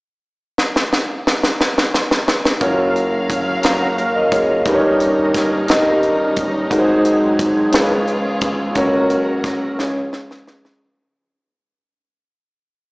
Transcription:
0.58 snare
0.76 snare
0.93 snare
1.27 snare
1.43 snare
1.61 snare
1.78 snare
1.94 snare
2.11 snare
2.28 snare
2.45 snare
2.60 grand piano F#1 F#2 F4 F#4 A#4 C#5, tonewheel organ F#3 C#4 A#4 F5, string section F#3 A#3 C#4 F5, kick, closed hi-hat
2.96 closed hi-hat
3.30 kick, closed hi-hat
3.63 grand piano F5 A#5, snare, closed hi-hat
3.81 grand piano C#5 F#5
3.98 grand piano A#4 F5, closed hi-hat
4.15 grand piano A#4 D#5
4.32 grand piano G#4 C#5, kick, closed hi-hat
4.49 grand piano F4 A#4
4.65 grand piano G1 G2 D#4 G4 A#4 B4, string section G3 D#4, tonewheel organ G3 C#4 D#4 A#4, kick, closed hi-hat
4.75 grand piano C#5
5.00 closed hi-hat
5.34 kick, snare, closed hi-hat
5.68 grand piano D#4 G4 A#4 D#5, snare, closed hi-hat
6.03 closed hi-hat
6.36 kick, closed hi-hat
6.70 grand piano G#1 G#2 D#4 F#4 G#4 A#4, string section F#3 G#3 C4, tonewheel organ F#3 C4 D#4 G4, kick, closed hi-hat
6.78 tonewheel organ G#4, grand piano C5
7.05 closed hi-hat
7.39 kick, closed hi-hat
7.72 grand piano C#2 C#3 C#4 F4 G#4 A#4, tonewheel organ F3 B3 C#4 G#4, string section G#3 B3 C#4 F4, snare, closed hi-hat
7.81 grand piano B4
8.07 closed hi-hat
8.41 kick, closed hi-hat
8.75 grand piano C#2 C#3 C#4 F#4 A#4 C#5, string section C#3 F#3 A#3 C#4 F#4, tonewheel organ C#3 F#3 A#3 C#4 A#4, kick, closed hi-hat
9.10 closed hi-hat
9.43 kick, snare, closed hi-hat
9.78 grand piano C#2 C#3 C#4 F4 G#4 C#5, tonewheel organ E3 G#3 C#4 G#4, string section F3 G#3 F4, snare
9.85 tonewheel organ F3
10.13 snare
10.31 snare
10.48 snare
10.65 snare

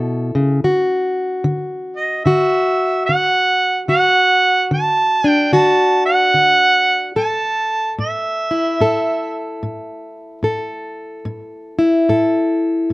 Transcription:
Already playing: steel-string acoustic guitar B2 E4 A4
0.35 steel-string acoustic guitar C#3
0.64 steel-string acoustic guitar D3 F#4
1.44 steel-string acoustic guitar D3
1.96 harmonica D#5
2.25 steel-string acoustic guitar D3 F#4, harmonica E5
3.06 steel-string acoustic guitar D3, harmonica F#5
3.88 steel-string acoustic guitar D3 F#4, harmonica F#5
4.71 steel-string acoustic guitar D3, harmonica A5
5.24 steel-string acoustic guitar D4
5.29 harmonica G5
5.53 steel-string acoustic guitar D3 F#4, harmonica A5
6.06 harmonica F#5
6.34 steel-string acoustic guitar D3
7.16 steel-string acoustic guitar A2 A4, harmonica A5
7.99 steel-string acoustic guitar A2, harmonica E5
8.51 steel-string acoustic guitar E4
8.81 steel-string acoustic guitar A2 A4
9.63 steel-string acoustic guitar A2
10.43 steel-string acoustic guitar A2 A4
11.25 steel-string acoustic guitar A2
11.79 steel-string acoustic guitar E4
12.09 steel-string acoustic guitar A2 A4
12.90 steel-string acoustic guitar A2

